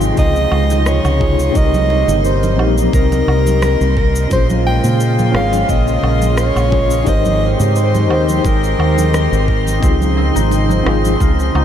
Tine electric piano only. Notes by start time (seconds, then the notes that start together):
Already playing: C3 C4 D#4 F4 G#4
1.19 C3 D#4 F4 G#4
1.53 C4 D#4 G4
1.58 A#4
2.56 C4 D#4 G4
2.62 A#4
4.27 C#4 F4 G#4
4.33 C5
5.31 C#4 F4 G#4
5.36 C#5
6.71 C#4 F4 G#4 C#5
7.04 D#4 G4 A#4
7.09 C5
8.07 D#4 G4 A#4
8.13 C5
9.80 C4 D#4 F4
9.85 G#4
10.83 C4 D#4 F4
10.88 G#4